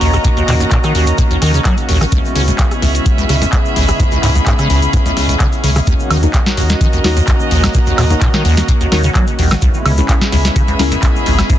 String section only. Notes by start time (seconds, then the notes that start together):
Already playing: C#4 F#4 D#5 A#5
2.37 G#4 E5
3.29 B5
6.07 F#4
6.17 D#5 A#5
9.62 C#4
9.80 B5
9.87 E5
10.01 G#4